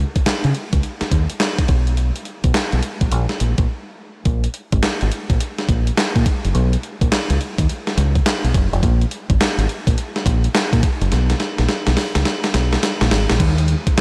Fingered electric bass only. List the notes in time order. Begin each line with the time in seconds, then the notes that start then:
0.26 muted fingered electric bass stroke
0.45 C#3
0.73 C#2
1.01 muted fingered electric bass stroke
1.12 D#2
1.69 B1
2.44 B1
2.73 B1
3.01 A#1
3.12 A#1
3.41 A#1
3.58 A#1
4.26 A#1
4.73 G#1
5.02 G#1
5.30 A#1
5.69 A#1
6.16 A#2
6.45 F#1
6.55 B1
7.01 A#1
7.30 C#2
7.58 D#2
7.97 C#2
8.44 B1
8.55 F#1
8.73 F1
8.83 A#1
9.30 G#1
9.58 G#1
9.87 A#1
10.26 A#1
10.73 A#2
11.01 F#1
11.13 B1
11.59 A#1
11.87 B1
12.16 C#2
12.55 B1
13.02 A#1
13.12 G#1
13.31 A#1
13.40 D#2
13.98 muted fingered electric bass stroke